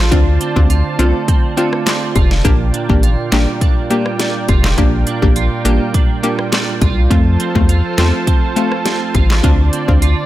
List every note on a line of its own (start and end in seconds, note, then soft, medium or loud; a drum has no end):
0.00 0.13 A1 medium
0.00 0.11 F3 medium
0.00 0.99 A3 medium
0.00 0.41 C4 medium
0.00 0.70 F4 medium
0.00 7.07 F4 medium
0.00 2.41 C5 medium
0.00 2.41 A5 medium
0.11 0.38 D2 loud
0.11 3.62 D3 medium
0.11 0.52 C4 medium
0.11 0.53 D4 medium
0.11 0.53 F4 loud
0.11 7.07 D5 medium
0.11 kick loud
0.11 closed hi-hat medium
0.41 1.27 C4 medium
0.41 closed hi-hat medium
0.56 0.83 D2 loud
0.56 0.71 C4 medium
0.56 0.71 D4 medium
0.56 0.71 F4 medium
0.56 kick medium
0.56 high bongo medium
0.70 2.15 F4 medium
0.70 closed hi-hat medium
0.99 1.13 C2 loud
0.99 1.56 A3 medium
0.99 1.15 C4 medium
0.99 1.15 D4 medium
0.99 1.16 F4 medium
0.99 closed hi-hat medium
0.99 low bongo medium
1.28 1.85 C4 medium
1.28 kick loud
1.28 closed hi-hat medium
1.57 2.51 A3 medium
1.57 1.74 C4 medium
1.57 1.74 D4 medium
1.57 1.74 F4 medium
1.57 closed hi-hat soft
1.57 high bongo medium
1.73 cross-stick loud
1.86 2.51 C4 medium
1.86 snare loud
1.86 clap loud
1.86 closed hi-hat medium
1.86 high bongo medium
2.16 2.42 F1 loud
2.16 3.03 F4 medium
2.16 kick loud
2.16 closed hi-hat medium
2.16 high bongo medium
2.16 low bongo medium
2.31 snare medium
2.44 2.71 A#1 loud
2.44 4.77 A#2 medium
2.44 2.85 A#3 medium
2.44 2.86 D4 medium
2.44 2.86 G4 loud
2.44 7.07 A#4 medium
2.44 7.07 G5 medium
2.44 kick loud
2.44 closed hi-hat medium
2.74 3.60 D4 medium
2.74 closed hi-hat medium
2.89 3.16 A1 loud
2.89 3.04 A#3 medium
2.89 3.04 D4 medium
2.89 3.04 G4 medium
2.89 kick medium
2.89 high bongo medium
3.03 4.48 F4 medium
3.03 closed hi-hat medium
3.32 3.46 A1 medium
3.32 3.89 G3 medium
3.32 3.48 A#3 medium
3.32 3.49 D4 medium
3.32 3.49 G4 medium
3.32 snare loud
3.32 clap loud
3.32 closed hi-hat medium
3.61 4.19 D4 medium
3.61 kick loud
3.61 closed hi-hat medium
3.90 5.64 G3 medium
3.90 4.07 A#3 medium
3.90 4.07 D4 medium
3.90 4.07 G4 medium
3.90 closed hi-hat soft
3.90 high bongo medium
4.06 cross-stick loud
4.19 5.06 D4 medium
4.19 snare medium
4.19 closed hi-hat medium
4.19 high bongo medium
4.49 4.75 F1 loud
4.49 5.36 F4 medium
4.49 kick loud
4.49 closed hi-hat medium
4.49 high bongo medium
4.49 low bongo medium
4.64 snare loud
4.64 clap medium
4.78 5.04 A#1 loud
4.78 7.11 A#2 medium
4.78 5.19 A#3 medium
4.78 5.19 D4 medium
4.78 5.19 G4 loud
4.78 kick loud
4.78 closed hi-hat medium
5.07 5.93 D4 medium
5.07 closed hi-hat medium
5.22 5.49 A#1 loud
5.22 5.37 A#3 medium
5.22 5.37 D4 medium
5.22 5.37 G4 medium
5.22 kick loud
5.22 high bongo medium
5.36 6.81 F4 medium
5.36 closed hi-hat medium
5.65 5.79 A1 loud
5.65 6.22 G3 medium
5.65 5.81 A#3 medium
5.65 5.82 D4 medium
5.65 5.82 G4 medium
5.65 closed hi-hat medium
5.94 6.51 D4 medium
5.94 kick loud
5.94 closed hi-hat medium
6.23 7.17 G3 medium
6.23 6.40 A#3 medium
6.23 6.40 D4 medium
6.23 6.40 G4 medium
6.23 closed hi-hat soft
6.23 high bongo medium
6.39 cross-stick medium
6.52 7.17 D4 medium
6.52 snare loud
6.52 clap medium
6.52 closed hi-hat medium
6.52 high bongo medium
6.81 7.08 C2 loud
6.81 7.69 F4 medium
6.81 kick loud
6.81 closed hi-hat medium
6.81 high bongo medium
6.81 low bongo medium
7.10 7.37 F2 loud
7.10 9.43 F3 medium
7.10 7.51 A3 medium
7.10 7.52 C4 medium
7.10 10.26 F4 medium
7.10 7.52 F4 loud
7.10 9.41 A4 medium
7.10 10.26 C5 medium
7.10 10.26 A5 medium
7.10 kick loud
7.10 closed hi-hat medium
7.40 8.27 C4 medium
7.40 closed hi-hat medium
7.55 7.82 E2 loud
7.55 7.70 A3 medium
7.55 7.70 C4 medium
7.55 7.70 F4 medium
7.55 kick medium
7.55 high bongo medium
7.69 9.14 F4 medium
7.69 closed hi-hat medium
7.98 8.12 E2 medium
7.98 8.14 A3 medium
7.98 8.56 A3 medium
7.98 8.15 C4 medium
7.98 8.15 F4 loud
7.98 snare loud
7.98 clap loud
7.98 closed hi-hat medium
8.27 8.85 C4 medium
8.27 kick loud
8.27 closed hi-hat medium
8.56 8.73 A3 medium
8.56 10.26 A3 medium
8.56 8.73 C4 medium
8.56 8.73 F4 medium
8.56 closed hi-hat soft
8.56 high bongo medium
8.72 cross-stick medium
8.85 9.73 C4 medium
8.85 snare medium
8.85 closed hi-hat medium
8.85 high bongo medium
9.15 9.41 A1 loud
9.15 10.02 F4 medium
9.15 kick loud
9.15 closed hi-hat medium
9.15 high bongo medium
9.15 low bongo medium
9.30 snare loud
9.30 clap medium
9.43 9.70 D2 loud
9.43 10.26 D3 medium
9.43 9.84 C4 medium
9.43 9.85 D4 medium
9.43 9.85 F4 loud
9.43 10.26 D5 medium
9.43 kick loud
9.43 closed hi-hat medium
9.73 10.26 C4 medium
9.73 closed hi-hat medium
9.88 10.15 D2 loud
9.88 10.03 C4 medium
9.88 10.03 D4 medium
9.88 10.03 F4 medium
9.88 kick medium
9.88 high bongo medium
10.02 10.26 F4 medium
10.02 closed hi-hat medium